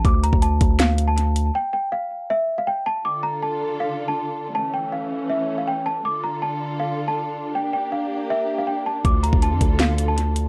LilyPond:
<<
  \new Staff \with { instrumentName = "Celesta" } { \time 4/4 \key d \minor \tempo 4 = 160 d'''8 bes''8 a''4 f''8. a''4~ a''16 | g''8 g''8 f''4 e''8. f''16 g''8 a''8 | d'''8 bes''8 a''4 f''8. a''4~ a''16 | a''8 g''8 f''4 e''8. f''16 g''8 a''8 |
d'''8 bes''8 a''4 f''8. a''4~ a''16 | g''8 g''8 f''4 e''8. f''16 g''8 a''8 | d'''8 bes''8 a''4 f''8. a''4~ a''16 | }
  \new Staff \with { instrumentName = "String section" } { \time 4/4 \key d \minor r1 | r1 | <d d' f' a'>1 | <e a cis'>1 |
<d d' f' a'>1 | <bes g'>1 | <d f' a'>1 | }
  \new Staff \with { instrumentName = "808-style bass" } { \clef bass \time 4/4 \key d \minor d,8. d,8. d,2~ d,8 | r1 | r1 | r1 |
r1 | r1 | d,8. d,8 f,16 d,2~ d,8 | }
  \new DrumStaff \with { instrumentName = "Drums" } \drummode { \time 4/4 <hh bd>8 hh16 bd16 hh8 <hh bd>8 <hh sn>8 hh8 hh8 hh8 | r4 r4 r4 r4 | r4 r4 r4 r4 | r4 r4 r4 r4 |
r4 r4 r4 r4 | r4 r4 r4 r4 | <hh bd>8 hh16 bd16 hh8 <hh bd>8 <hh sn>8 hh8 hh8 hh8 | }
>>